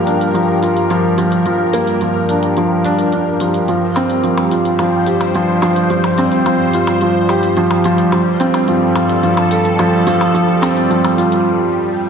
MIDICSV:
0, 0, Header, 1, 6, 480
1, 0, Start_track
1, 0, Tempo, 555556
1, 1262, Time_signature, 4, 2, 24, 8
1, 10449, End_track
2, 0, Start_track
2, 0, Title_t, "Analog synth pad"
2, 0, Program_c, 0, 89
2, 0, Note_on_c, 0, 55, 88
2, 0, Note_on_c, 0, 67, 77
2, 0, Note_on_c, 0, 70, 87
2, 0, Note_on_c, 0, 77, 66
2, 3172, Note_off_c, 0, 55, 0
2, 3183, Note_on_c, 0, 55, 82
2, 3771, Note_off_c, 0, 70, 0
2, 3784, Note_on_c, 0, 72, 76
2, 7290, Note_on_c, 0, 69, 79
2, 8556, Note_off_c, 0, 72, 0
2, 10449, Note_off_c, 0, 55, 0
2, 10449, Note_off_c, 0, 67, 0
2, 10449, Note_off_c, 0, 69, 0
2, 10449, Note_off_c, 0, 77, 0
2, 10449, End_track
3, 0, Start_track
3, 0, Title_t, "Felt piano"
3, 0, Program_c, 1, 0
3, 0, Control_c, 1, 64, 127
3, 0, Note_on_c, 1, 53, 67
3, 0, Note_on_c, 1, 58, 93
3, 0, Note_on_c, 1, 65, 69
3, 57, Note_on_c, 1, 62, 68
3, 288, Note_off_c, 1, 62, 0
3, 296, Note_off_c, 1, 53, 0
3, 296, Note_on_c, 1, 53, 77
3, 527, Note_off_c, 1, 53, 0
3, 542, Note_off_c, 1, 65, 0
3, 542, Note_on_c, 1, 65, 72
3, 770, Note_off_c, 1, 65, 0
3, 783, Note_on_c, 1, 53, 96
3, 1008, Note_off_c, 1, 53, 0
3, 1021, Note_on_c, 1, 53, 89
3, 1249, Note_off_c, 1, 53, 0
3, 1262, Note_on_c, 1, 53, 77
3, 1399, Note_off_c, 1, 53, 0
3, 1500, Note_off_c, 1, 58, 0
3, 1500, Note_on_c, 1, 58, 92
3, 1638, Note_off_c, 1, 58, 0
3, 1741, Note_on_c, 1, 53, 68
3, 1969, Note_off_c, 1, 53, 0
3, 1980, Note_on_c, 1, 62, 72
3, 2209, Note_off_c, 1, 62, 0
3, 2223, Note_on_c, 1, 53, 79
3, 2451, Note_off_c, 1, 53, 0
3, 2464, Note_on_c, 1, 62, 92
3, 2691, Note_off_c, 1, 62, 0
3, 2704, Note_on_c, 1, 62, 72
3, 2840, Note_off_c, 1, 62, 0
3, 2945, Note_on_c, 1, 53, 69
3, 3172, Note_off_c, 1, 53, 0
3, 3185, Note_on_c, 1, 53, 75
3, 3194, Control_c, 1, 64, 0
3, 3320, Note_off_c, 1, 53, 0
3, 3354, Control_c, 1, 64, 127
3, 3426, Note_on_c, 1, 60, 92
3, 3561, Note_off_c, 1, 60, 0
3, 3662, Note_on_c, 1, 53, 70
3, 3890, Note_off_c, 1, 53, 0
3, 3901, Note_on_c, 1, 65, 67
3, 4129, Note_off_c, 1, 65, 0
3, 4141, Note_on_c, 1, 53, 81
3, 4370, Note_off_c, 1, 53, 0
3, 4381, Note_on_c, 1, 67, 71
3, 4610, Note_off_c, 1, 67, 0
3, 4625, Note_on_c, 1, 53, 96
3, 4849, Note_off_c, 1, 53, 0
3, 4862, Note_on_c, 1, 53, 98
3, 5088, Note_off_c, 1, 53, 0
3, 5101, Note_on_c, 1, 53, 76
3, 5238, Note_off_c, 1, 53, 0
3, 5342, Note_on_c, 1, 60, 88
3, 5479, Note_off_c, 1, 60, 0
3, 5583, Note_on_c, 1, 53, 68
3, 5811, Note_off_c, 1, 53, 0
3, 5824, Note_on_c, 1, 65, 76
3, 6051, Note_off_c, 1, 65, 0
3, 6066, Note_on_c, 1, 53, 78
3, 6292, Note_off_c, 1, 53, 0
3, 6302, Note_on_c, 1, 67, 78
3, 6530, Note_off_c, 1, 67, 0
3, 6542, Note_on_c, 1, 53, 97
3, 6770, Note_off_c, 1, 53, 0
3, 6785, Note_on_c, 1, 53, 99
3, 7009, Note_off_c, 1, 53, 0
3, 7022, Note_on_c, 1, 53, 76
3, 7034, Control_c, 1, 64, 0
3, 7159, Note_off_c, 1, 53, 0
3, 7165, Control_c, 1, 64, 127
3, 7258, Note_on_c, 1, 60, 94
3, 7397, Note_off_c, 1, 60, 0
3, 7500, Note_on_c, 1, 53, 77
3, 7729, Note_off_c, 1, 53, 0
3, 7737, Note_on_c, 1, 65, 71
3, 7968, Note_off_c, 1, 65, 0
3, 7977, Note_on_c, 1, 53, 82
3, 8208, Note_off_c, 1, 53, 0
3, 8221, Note_on_c, 1, 69, 74
3, 8450, Note_off_c, 1, 69, 0
3, 8462, Note_on_c, 1, 53, 102
3, 8689, Note_off_c, 1, 53, 0
3, 8702, Note_on_c, 1, 53, 103
3, 8925, Note_off_c, 1, 53, 0
3, 8938, Note_on_c, 1, 53, 83
3, 9077, Note_off_c, 1, 53, 0
3, 9176, Note_on_c, 1, 60, 100
3, 9316, Note_off_c, 1, 60, 0
3, 9418, Note_on_c, 1, 53, 78
3, 9648, Note_off_c, 1, 53, 0
3, 9660, Note_on_c, 1, 65, 75
3, 9889, Note_off_c, 1, 65, 0
3, 10449, End_track
4, 0, Start_track
4, 0, Title_t, "Cello section"
4, 0, Program_c, 2, 48
4, 0, Note_on_c, 2, 43, 74
4, 3156, Note_off_c, 2, 43, 0
4, 3181, Note_on_c, 2, 43, 84
4, 6997, Note_off_c, 2, 43, 0
4, 7021, Note_on_c, 2, 43, 86
4, 9901, Note_off_c, 2, 43, 0
4, 10449, End_track
5, 0, Start_track
5, 0, Title_t, "Percussion blips"
5, 3420, Note_on_c, 9, 77, 62
5, 3507, Note_off_c, 9, 77, 0
5, 3780, Note_on_c, 9, 77, 63
5, 3867, Note_off_c, 9, 77, 0
5, 4138, Note_on_c, 9, 77, 56
5, 4225, Note_off_c, 9, 77, 0
5, 4498, Note_on_c, 9, 77, 60
5, 4585, Note_off_c, 9, 77, 0
5, 4857, Note_on_c, 9, 77, 61
5, 4944, Note_off_c, 9, 77, 0
5, 5218, Note_on_c, 9, 77, 60
5, 5305, Note_off_c, 9, 77, 0
5, 5581, Note_on_c, 9, 77, 61
5, 5667, Note_off_c, 9, 77, 0
5, 5939, Note_on_c, 9, 77, 61
5, 6025, Note_off_c, 9, 77, 0
5, 6299, Note_on_c, 9, 77, 56
5, 6385, Note_off_c, 9, 77, 0
5, 6658, Note_on_c, 9, 77, 62
5, 6745, Note_off_c, 9, 77, 0
5, 7018, Note_on_c, 9, 77, 63
5, 7104, Note_off_c, 9, 77, 0
5, 7378, Note_on_c, 9, 77, 65
5, 7465, Note_off_c, 9, 77, 0
5, 7738, Note_on_c, 9, 77, 60
5, 7824, Note_off_c, 9, 77, 0
5, 8098, Note_on_c, 9, 77, 66
5, 8184, Note_off_c, 9, 77, 0
5, 8459, Note_on_c, 9, 77, 64
5, 8546, Note_off_c, 9, 77, 0
5, 8822, Note_on_c, 9, 77, 64
5, 8908, Note_off_c, 9, 77, 0
5, 9184, Note_on_c, 9, 77, 73
5, 9270, Note_off_c, 9, 77, 0
5, 9543, Note_on_c, 9, 77, 67
5, 9630, Note_off_c, 9, 77, 0
5, 10449, End_track
6, 0, Start_track
6, 0, Title_t, "Drums"
6, 62, Note_on_c, 9, 42, 65
6, 148, Note_off_c, 9, 42, 0
6, 184, Note_on_c, 9, 42, 40
6, 270, Note_off_c, 9, 42, 0
6, 304, Note_on_c, 9, 42, 27
6, 390, Note_off_c, 9, 42, 0
6, 541, Note_on_c, 9, 42, 72
6, 628, Note_off_c, 9, 42, 0
6, 662, Note_on_c, 9, 42, 39
6, 748, Note_off_c, 9, 42, 0
6, 780, Note_on_c, 9, 42, 32
6, 867, Note_off_c, 9, 42, 0
6, 1020, Note_on_c, 9, 42, 78
6, 1106, Note_off_c, 9, 42, 0
6, 1140, Note_on_c, 9, 42, 42
6, 1226, Note_off_c, 9, 42, 0
6, 1259, Note_on_c, 9, 42, 28
6, 1345, Note_off_c, 9, 42, 0
6, 1499, Note_on_c, 9, 42, 72
6, 1585, Note_off_c, 9, 42, 0
6, 1619, Note_on_c, 9, 42, 42
6, 1705, Note_off_c, 9, 42, 0
6, 1737, Note_on_c, 9, 42, 30
6, 1823, Note_off_c, 9, 42, 0
6, 1979, Note_on_c, 9, 42, 69
6, 2065, Note_off_c, 9, 42, 0
6, 2098, Note_on_c, 9, 42, 42
6, 2184, Note_off_c, 9, 42, 0
6, 2218, Note_on_c, 9, 42, 30
6, 2305, Note_off_c, 9, 42, 0
6, 2459, Note_on_c, 9, 42, 69
6, 2545, Note_off_c, 9, 42, 0
6, 2580, Note_on_c, 9, 42, 40
6, 2667, Note_off_c, 9, 42, 0
6, 2700, Note_on_c, 9, 42, 31
6, 2786, Note_off_c, 9, 42, 0
6, 2940, Note_on_c, 9, 42, 74
6, 3026, Note_off_c, 9, 42, 0
6, 3061, Note_on_c, 9, 42, 40
6, 3147, Note_off_c, 9, 42, 0
6, 3181, Note_on_c, 9, 42, 27
6, 3268, Note_off_c, 9, 42, 0
6, 3420, Note_on_c, 9, 42, 69
6, 3507, Note_off_c, 9, 42, 0
6, 3540, Note_on_c, 9, 42, 39
6, 3626, Note_off_c, 9, 42, 0
6, 3660, Note_on_c, 9, 42, 28
6, 3747, Note_off_c, 9, 42, 0
6, 3901, Note_on_c, 9, 42, 70
6, 3987, Note_off_c, 9, 42, 0
6, 4020, Note_on_c, 9, 42, 39
6, 4107, Note_off_c, 9, 42, 0
6, 4138, Note_on_c, 9, 42, 28
6, 4225, Note_off_c, 9, 42, 0
6, 4377, Note_on_c, 9, 42, 73
6, 4463, Note_off_c, 9, 42, 0
6, 4498, Note_on_c, 9, 42, 41
6, 4585, Note_off_c, 9, 42, 0
6, 4619, Note_on_c, 9, 42, 30
6, 4705, Note_off_c, 9, 42, 0
6, 4857, Note_on_c, 9, 42, 70
6, 4944, Note_off_c, 9, 42, 0
6, 4979, Note_on_c, 9, 42, 40
6, 5065, Note_off_c, 9, 42, 0
6, 5098, Note_on_c, 9, 42, 29
6, 5185, Note_off_c, 9, 42, 0
6, 5338, Note_on_c, 9, 42, 73
6, 5425, Note_off_c, 9, 42, 0
6, 5458, Note_on_c, 9, 42, 43
6, 5544, Note_off_c, 9, 42, 0
6, 5581, Note_on_c, 9, 42, 30
6, 5667, Note_off_c, 9, 42, 0
6, 5819, Note_on_c, 9, 42, 67
6, 5906, Note_off_c, 9, 42, 0
6, 5939, Note_on_c, 9, 42, 38
6, 6025, Note_off_c, 9, 42, 0
6, 6057, Note_on_c, 9, 42, 29
6, 6144, Note_off_c, 9, 42, 0
6, 6299, Note_on_c, 9, 42, 70
6, 6385, Note_off_c, 9, 42, 0
6, 6419, Note_on_c, 9, 42, 37
6, 6506, Note_off_c, 9, 42, 0
6, 6538, Note_on_c, 9, 42, 30
6, 6625, Note_off_c, 9, 42, 0
6, 6776, Note_on_c, 9, 42, 67
6, 6863, Note_off_c, 9, 42, 0
6, 6897, Note_on_c, 9, 42, 40
6, 6984, Note_off_c, 9, 42, 0
6, 7018, Note_on_c, 9, 42, 30
6, 7104, Note_off_c, 9, 42, 0
6, 7257, Note_on_c, 9, 42, 72
6, 7344, Note_off_c, 9, 42, 0
6, 7378, Note_on_c, 9, 42, 40
6, 7465, Note_off_c, 9, 42, 0
6, 7499, Note_on_c, 9, 42, 30
6, 7585, Note_off_c, 9, 42, 0
6, 7738, Note_on_c, 9, 42, 66
6, 7824, Note_off_c, 9, 42, 0
6, 7858, Note_on_c, 9, 42, 40
6, 7945, Note_off_c, 9, 42, 0
6, 7978, Note_on_c, 9, 42, 30
6, 8064, Note_off_c, 9, 42, 0
6, 8217, Note_on_c, 9, 42, 67
6, 8304, Note_off_c, 9, 42, 0
6, 8338, Note_on_c, 9, 42, 38
6, 8425, Note_off_c, 9, 42, 0
6, 8459, Note_on_c, 9, 42, 30
6, 8546, Note_off_c, 9, 42, 0
6, 8700, Note_on_c, 9, 42, 76
6, 8787, Note_off_c, 9, 42, 0
6, 8822, Note_on_c, 9, 42, 43
6, 8908, Note_off_c, 9, 42, 0
6, 8943, Note_on_c, 9, 42, 29
6, 9029, Note_off_c, 9, 42, 0
6, 9184, Note_on_c, 9, 42, 76
6, 9270, Note_off_c, 9, 42, 0
6, 9304, Note_on_c, 9, 42, 43
6, 9390, Note_off_c, 9, 42, 0
6, 9425, Note_on_c, 9, 42, 30
6, 9512, Note_off_c, 9, 42, 0
6, 9663, Note_on_c, 9, 42, 65
6, 9749, Note_off_c, 9, 42, 0
6, 9782, Note_on_c, 9, 42, 42
6, 9868, Note_off_c, 9, 42, 0
6, 10449, End_track
0, 0, End_of_file